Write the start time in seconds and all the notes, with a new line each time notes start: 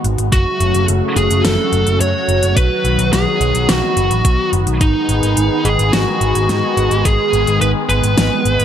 Already playing: D#3 G#3 B3 F#4
0.04 G#1, closed hi-hat
0.18 G#1, closed hi-hat
0.32 F#1 C#3 F#3 A3 F#4, kick, closed hi-hat
0.60 F#1, closed hi-hat
0.74 F#1, closed hi-hat
0.88 F#1, closed hi-hat
1.16 F#1 G#4, closed hi-hat
1.30 F#1, closed hi-hat
1.44 F#1 A4, snare, closed hi-hat
1.72 F#1, closed hi-hat
1.86 F#1, closed hi-hat
2.00 F#2 C#5, closed hi-hat
2.28 F#1, closed hi-hat
2.42 F#1, closed hi-hat
2.56 B1 D#3 B3 B4, kick, closed hi-hat
2.84 B1, closed hi-hat
2.99 B1, closed hi-hat
3.13 B1 G#4, snare, closed hi-hat
3.41 B1, closed hi-hat
3.55 B1, closed hi-hat
3.69 B1 F#4, snare, closed hi-hat
3.97 F#1, closed hi-hat
4.11 A1, closed hi-hat
4.25 B1, kick, closed hi-hat
4.53 F#1, closed hi-hat
4.67 B1, closed hi-hat
4.81 G#1 G#3 D#4 G#4, kick, closed hi-hat
5.09 G#1, closed hi-hat
5.23 G#1, closed hi-hat
5.37 G#1, closed hi-hat
5.65 G#1 G#4, closed hi-hat
5.79 G#1, closed hi-hat
5.93 G#1 F#4, snare, closed hi-hat
6.21 G#1, closed hi-hat
6.35 G#1, closed hi-hat
6.49 G#2, snare, closed hi-hat
6.77 G#1, closed hi-hat
6.91 G#1, closed hi-hat
7.05 G#1 G#4, kick, closed hi-hat
7.33 G#1, closed hi-hat
7.47 G#1, closed hi-hat
7.61 G#1 B4, closed hi-hat
7.89 G#1 B4, closed hi-hat
8.03 G#1, closed hi-hat
8.17 G#1, snare, closed hi-hat
8.45 G#1, closed hi-hat
8.59 G#1, closed hi-hat